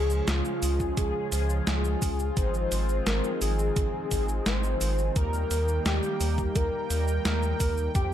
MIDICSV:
0, 0, Header, 1, 6, 480
1, 0, Start_track
1, 0, Tempo, 697674
1, 1630, Time_signature, 4, 2, 24, 8
1, 5598, End_track
2, 0, Start_track
2, 0, Title_t, "Soft synth lead"
2, 0, Program_c, 0, 80
2, 0, Note_on_c, 0, 68, 101
2, 190, Note_on_c, 0, 65, 90
2, 200, Note_off_c, 0, 68, 0
2, 670, Note_on_c, 0, 68, 96
2, 681, Note_off_c, 0, 65, 0
2, 1146, Note_off_c, 0, 68, 0
2, 1150, Note_on_c, 0, 68, 97
2, 1629, Note_on_c, 0, 72, 112
2, 1639, Note_off_c, 0, 68, 0
2, 2110, Note_on_c, 0, 70, 99
2, 2121, Note_off_c, 0, 72, 0
2, 2346, Note_off_c, 0, 70, 0
2, 2350, Note_on_c, 0, 68, 106
2, 3071, Note_on_c, 0, 72, 103
2, 3081, Note_off_c, 0, 68, 0
2, 3501, Note_off_c, 0, 72, 0
2, 3501, Note_on_c, 0, 72, 78
2, 3550, Note_on_c, 0, 70, 111
2, 3561, Note_off_c, 0, 72, 0
2, 4025, Note_off_c, 0, 70, 0
2, 4029, Note_on_c, 0, 67, 100
2, 4510, Note_on_c, 0, 70, 104
2, 4520, Note_off_c, 0, 67, 0
2, 4985, Note_off_c, 0, 70, 0
2, 4989, Note_on_c, 0, 70, 105
2, 5442, Note_off_c, 0, 70, 0
2, 5470, Note_on_c, 0, 67, 108
2, 5598, Note_off_c, 0, 67, 0
2, 5598, End_track
3, 0, Start_track
3, 0, Title_t, "Analog polysynth"
3, 0, Program_c, 1, 90
3, 0, Note_on_c, 1, 53, 92
3, 0, Note_on_c, 1, 56, 81
3, 0, Note_on_c, 1, 61, 85
3, 0, Note_on_c, 1, 68, 100
3, 881, Note_off_c, 1, 53, 0
3, 881, Note_off_c, 1, 56, 0
3, 881, Note_off_c, 1, 61, 0
3, 881, Note_off_c, 1, 68, 0
3, 909, Note_on_c, 1, 53, 85
3, 909, Note_on_c, 1, 56, 78
3, 909, Note_on_c, 1, 68, 94
3, 910, Note_on_c, 1, 61, 78
3, 1601, Note_off_c, 1, 53, 0
3, 1601, Note_off_c, 1, 56, 0
3, 1601, Note_off_c, 1, 61, 0
3, 1601, Note_off_c, 1, 68, 0
3, 1629, Note_on_c, 1, 68, 106
3, 1630, Note_on_c, 1, 53, 96
3, 1630, Note_on_c, 1, 60, 88
3, 1630, Note_on_c, 1, 63, 88
3, 2801, Note_off_c, 1, 53, 0
3, 2801, Note_off_c, 1, 60, 0
3, 2801, Note_off_c, 1, 63, 0
3, 2801, Note_off_c, 1, 68, 0
3, 2830, Note_on_c, 1, 53, 82
3, 2830, Note_on_c, 1, 60, 74
3, 2830, Note_on_c, 1, 63, 72
3, 2830, Note_on_c, 1, 68, 90
3, 3521, Note_off_c, 1, 53, 0
3, 3521, Note_off_c, 1, 60, 0
3, 3521, Note_off_c, 1, 63, 0
3, 3521, Note_off_c, 1, 68, 0
3, 3550, Note_on_c, 1, 55, 91
3, 3550, Note_on_c, 1, 58, 83
3, 3550, Note_on_c, 1, 63, 83
3, 3550, Note_on_c, 1, 70, 101
3, 4721, Note_off_c, 1, 55, 0
3, 4721, Note_off_c, 1, 58, 0
3, 4721, Note_off_c, 1, 63, 0
3, 4721, Note_off_c, 1, 70, 0
3, 4750, Note_on_c, 1, 55, 87
3, 4750, Note_on_c, 1, 58, 79
3, 4750, Note_on_c, 1, 63, 78
3, 4750, Note_on_c, 1, 70, 95
3, 5441, Note_off_c, 1, 55, 0
3, 5441, Note_off_c, 1, 58, 0
3, 5441, Note_off_c, 1, 63, 0
3, 5441, Note_off_c, 1, 70, 0
3, 5469, Note_on_c, 1, 56, 87
3, 5470, Note_on_c, 1, 53, 96
3, 5470, Note_on_c, 1, 60, 86
3, 5470, Note_on_c, 1, 79, 102
3, 5598, Note_off_c, 1, 53, 0
3, 5598, Note_off_c, 1, 56, 0
3, 5598, Note_off_c, 1, 60, 0
3, 5598, Note_off_c, 1, 79, 0
3, 5598, End_track
4, 0, Start_track
4, 0, Title_t, "Analog synth pad"
4, 0, Program_c, 2, 89
4, 0, Note_on_c, 2, 49, 79
4, 0, Note_on_c, 2, 53, 72
4, 0, Note_on_c, 2, 56, 73
4, 0, Note_on_c, 2, 65, 87
4, 1610, Note_off_c, 2, 49, 0
4, 1610, Note_off_c, 2, 56, 0
4, 1611, Note_off_c, 2, 53, 0
4, 1630, Note_on_c, 2, 51, 79
4, 1630, Note_on_c, 2, 56, 74
4, 1630, Note_on_c, 2, 60, 73
4, 3522, Note_off_c, 2, 65, 0
4, 3531, Note_off_c, 2, 56, 0
4, 3531, Note_off_c, 2, 60, 0
4, 3551, Note_on_c, 2, 55, 73
4, 3551, Note_on_c, 2, 58, 73
4, 3551, Note_on_c, 2, 79, 88
4, 5442, Note_off_c, 2, 51, 0
4, 5451, Note_off_c, 2, 55, 0
4, 5451, Note_off_c, 2, 58, 0
4, 5470, Note_on_c, 2, 53, 79
4, 5470, Note_on_c, 2, 56, 71
4, 5470, Note_on_c, 2, 60, 75
4, 5598, Note_off_c, 2, 53, 0
4, 5598, Note_off_c, 2, 56, 0
4, 5598, Note_off_c, 2, 60, 0
4, 5598, Note_off_c, 2, 79, 0
4, 5598, End_track
5, 0, Start_track
5, 0, Title_t, "Analog synth bass"
5, 0, Program_c, 3, 38
5, 0, Note_on_c, 3, 37, 89
5, 147, Note_off_c, 3, 37, 0
5, 190, Note_on_c, 3, 37, 104
5, 289, Note_off_c, 3, 37, 0
5, 430, Note_on_c, 3, 37, 94
5, 627, Note_off_c, 3, 37, 0
5, 670, Note_on_c, 3, 37, 87
5, 769, Note_off_c, 3, 37, 0
5, 909, Note_on_c, 3, 37, 92
5, 1107, Note_off_c, 3, 37, 0
5, 1149, Note_on_c, 3, 37, 88
5, 1347, Note_off_c, 3, 37, 0
5, 1390, Note_on_c, 3, 37, 96
5, 1587, Note_off_c, 3, 37, 0
5, 1630, Note_on_c, 3, 32, 102
5, 1827, Note_off_c, 3, 32, 0
5, 1869, Note_on_c, 3, 32, 88
5, 2067, Note_off_c, 3, 32, 0
5, 2109, Note_on_c, 3, 32, 102
5, 2208, Note_off_c, 3, 32, 0
5, 2349, Note_on_c, 3, 32, 97
5, 2547, Note_off_c, 3, 32, 0
5, 2590, Note_on_c, 3, 32, 86
5, 2688, Note_off_c, 3, 32, 0
5, 2830, Note_on_c, 3, 32, 95
5, 3027, Note_off_c, 3, 32, 0
5, 3070, Note_on_c, 3, 32, 89
5, 3267, Note_off_c, 3, 32, 0
5, 3309, Note_on_c, 3, 32, 96
5, 3507, Note_off_c, 3, 32, 0
5, 3550, Note_on_c, 3, 39, 103
5, 3747, Note_off_c, 3, 39, 0
5, 3790, Note_on_c, 3, 39, 87
5, 3987, Note_off_c, 3, 39, 0
5, 4029, Note_on_c, 3, 39, 105
5, 4128, Note_off_c, 3, 39, 0
5, 4269, Note_on_c, 3, 39, 96
5, 4467, Note_off_c, 3, 39, 0
5, 4510, Note_on_c, 3, 39, 86
5, 4609, Note_off_c, 3, 39, 0
5, 4749, Note_on_c, 3, 39, 94
5, 4947, Note_off_c, 3, 39, 0
5, 4989, Note_on_c, 3, 39, 89
5, 5187, Note_off_c, 3, 39, 0
5, 5230, Note_on_c, 3, 39, 97
5, 5427, Note_off_c, 3, 39, 0
5, 5470, Note_on_c, 3, 41, 101
5, 5598, Note_off_c, 3, 41, 0
5, 5598, End_track
6, 0, Start_track
6, 0, Title_t, "Drums"
6, 70, Note_on_c, 9, 82, 29
6, 139, Note_off_c, 9, 82, 0
6, 190, Note_on_c, 9, 38, 122
6, 190, Note_on_c, 9, 42, 96
6, 190, Note_on_c, 9, 82, 39
6, 259, Note_off_c, 9, 38, 0
6, 259, Note_off_c, 9, 42, 0
6, 259, Note_off_c, 9, 82, 0
6, 310, Note_on_c, 9, 82, 27
6, 379, Note_off_c, 9, 82, 0
6, 430, Note_on_c, 9, 46, 81
6, 430, Note_on_c, 9, 82, 70
6, 499, Note_off_c, 9, 46, 0
6, 499, Note_off_c, 9, 82, 0
6, 550, Note_on_c, 9, 36, 62
6, 550, Note_on_c, 9, 82, 30
6, 619, Note_off_c, 9, 36, 0
6, 619, Note_off_c, 9, 82, 0
6, 670, Note_on_c, 9, 36, 116
6, 670, Note_on_c, 9, 42, 98
6, 670, Note_on_c, 9, 82, 40
6, 738, Note_off_c, 9, 36, 0
6, 739, Note_off_c, 9, 42, 0
6, 739, Note_off_c, 9, 82, 0
6, 909, Note_on_c, 9, 46, 85
6, 909, Note_on_c, 9, 82, 71
6, 978, Note_off_c, 9, 46, 0
6, 978, Note_off_c, 9, 82, 0
6, 1030, Note_on_c, 9, 82, 30
6, 1099, Note_off_c, 9, 82, 0
6, 1150, Note_on_c, 9, 38, 117
6, 1150, Note_on_c, 9, 42, 96
6, 1150, Note_on_c, 9, 82, 40
6, 1219, Note_off_c, 9, 38, 0
6, 1219, Note_off_c, 9, 42, 0
6, 1219, Note_off_c, 9, 82, 0
6, 1270, Note_on_c, 9, 82, 28
6, 1339, Note_off_c, 9, 82, 0
6, 1390, Note_on_c, 9, 36, 107
6, 1390, Note_on_c, 9, 46, 84
6, 1390, Note_on_c, 9, 82, 71
6, 1458, Note_off_c, 9, 36, 0
6, 1459, Note_off_c, 9, 46, 0
6, 1459, Note_off_c, 9, 82, 0
6, 1510, Note_on_c, 9, 82, 29
6, 1579, Note_off_c, 9, 82, 0
6, 1630, Note_on_c, 9, 36, 123
6, 1630, Note_on_c, 9, 42, 91
6, 1630, Note_on_c, 9, 82, 38
6, 1698, Note_off_c, 9, 36, 0
6, 1699, Note_off_c, 9, 42, 0
6, 1699, Note_off_c, 9, 82, 0
6, 1750, Note_on_c, 9, 82, 26
6, 1819, Note_off_c, 9, 82, 0
6, 1870, Note_on_c, 9, 46, 81
6, 1870, Note_on_c, 9, 82, 66
6, 1939, Note_off_c, 9, 46, 0
6, 1939, Note_off_c, 9, 82, 0
6, 1989, Note_on_c, 9, 82, 29
6, 2058, Note_off_c, 9, 82, 0
6, 2109, Note_on_c, 9, 38, 123
6, 2109, Note_on_c, 9, 42, 98
6, 2109, Note_on_c, 9, 82, 38
6, 2178, Note_off_c, 9, 38, 0
6, 2178, Note_off_c, 9, 42, 0
6, 2178, Note_off_c, 9, 82, 0
6, 2230, Note_on_c, 9, 82, 27
6, 2299, Note_off_c, 9, 82, 0
6, 2350, Note_on_c, 9, 46, 79
6, 2350, Note_on_c, 9, 82, 67
6, 2419, Note_off_c, 9, 46, 0
6, 2419, Note_off_c, 9, 82, 0
6, 2470, Note_on_c, 9, 82, 29
6, 2539, Note_off_c, 9, 82, 0
6, 2590, Note_on_c, 9, 36, 124
6, 2590, Note_on_c, 9, 42, 100
6, 2590, Note_on_c, 9, 82, 38
6, 2659, Note_off_c, 9, 36, 0
6, 2659, Note_off_c, 9, 42, 0
6, 2659, Note_off_c, 9, 82, 0
6, 2830, Note_on_c, 9, 36, 65
6, 2830, Note_on_c, 9, 46, 84
6, 2830, Note_on_c, 9, 82, 70
6, 2899, Note_off_c, 9, 36, 0
6, 2899, Note_off_c, 9, 46, 0
6, 2899, Note_off_c, 9, 82, 0
6, 2950, Note_on_c, 9, 82, 29
6, 3019, Note_off_c, 9, 82, 0
6, 3070, Note_on_c, 9, 38, 120
6, 3070, Note_on_c, 9, 42, 97
6, 3070, Note_on_c, 9, 82, 38
6, 3139, Note_off_c, 9, 38, 0
6, 3139, Note_off_c, 9, 42, 0
6, 3139, Note_off_c, 9, 82, 0
6, 3190, Note_on_c, 9, 82, 26
6, 3258, Note_off_c, 9, 82, 0
6, 3310, Note_on_c, 9, 46, 80
6, 3310, Note_on_c, 9, 82, 67
6, 3379, Note_off_c, 9, 46, 0
6, 3379, Note_off_c, 9, 82, 0
6, 3430, Note_on_c, 9, 82, 29
6, 3499, Note_off_c, 9, 82, 0
6, 3550, Note_on_c, 9, 36, 127
6, 3550, Note_on_c, 9, 42, 93
6, 3550, Note_on_c, 9, 82, 36
6, 3619, Note_off_c, 9, 36, 0
6, 3619, Note_off_c, 9, 42, 0
6, 3619, Note_off_c, 9, 82, 0
6, 3670, Note_on_c, 9, 82, 26
6, 3739, Note_off_c, 9, 82, 0
6, 3790, Note_on_c, 9, 46, 76
6, 3790, Note_on_c, 9, 82, 64
6, 3859, Note_off_c, 9, 46, 0
6, 3859, Note_off_c, 9, 82, 0
6, 3910, Note_on_c, 9, 82, 28
6, 3979, Note_off_c, 9, 82, 0
6, 4030, Note_on_c, 9, 38, 127
6, 4030, Note_on_c, 9, 42, 95
6, 4030, Note_on_c, 9, 82, 38
6, 4099, Note_off_c, 9, 38, 0
6, 4099, Note_off_c, 9, 42, 0
6, 4099, Note_off_c, 9, 82, 0
6, 4150, Note_on_c, 9, 82, 26
6, 4219, Note_off_c, 9, 82, 0
6, 4270, Note_on_c, 9, 46, 78
6, 4270, Note_on_c, 9, 82, 65
6, 4338, Note_off_c, 9, 46, 0
6, 4338, Note_off_c, 9, 82, 0
6, 4390, Note_on_c, 9, 36, 65
6, 4390, Note_on_c, 9, 82, 28
6, 4458, Note_off_c, 9, 82, 0
6, 4459, Note_off_c, 9, 36, 0
6, 4510, Note_on_c, 9, 36, 125
6, 4510, Note_on_c, 9, 42, 97
6, 4510, Note_on_c, 9, 82, 37
6, 4579, Note_off_c, 9, 36, 0
6, 4579, Note_off_c, 9, 42, 0
6, 4579, Note_off_c, 9, 82, 0
6, 4750, Note_on_c, 9, 46, 80
6, 4750, Note_on_c, 9, 82, 68
6, 4819, Note_off_c, 9, 46, 0
6, 4819, Note_off_c, 9, 82, 0
6, 4870, Note_on_c, 9, 82, 29
6, 4939, Note_off_c, 9, 82, 0
6, 4990, Note_on_c, 9, 38, 123
6, 4990, Note_on_c, 9, 42, 95
6, 4990, Note_on_c, 9, 82, 36
6, 5059, Note_off_c, 9, 38, 0
6, 5059, Note_off_c, 9, 42, 0
6, 5059, Note_off_c, 9, 82, 0
6, 5110, Note_on_c, 9, 82, 26
6, 5179, Note_off_c, 9, 82, 0
6, 5230, Note_on_c, 9, 36, 113
6, 5230, Note_on_c, 9, 46, 76
6, 5230, Note_on_c, 9, 82, 67
6, 5299, Note_off_c, 9, 36, 0
6, 5299, Note_off_c, 9, 46, 0
6, 5299, Note_off_c, 9, 82, 0
6, 5350, Note_on_c, 9, 82, 29
6, 5419, Note_off_c, 9, 82, 0
6, 5470, Note_on_c, 9, 36, 127
6, 5470, Note_on_c, 9, 42, 89
6, 5470, Note_on_c, 9, 82, 36
6, 5539, Note_off_c, 9, 36, 0
6, 5539, Note_off_c, 9, 42, 0
6, 5539, Note_off_c, 9, 82, 0
6, 5598, End_track
0, 0, End_of_file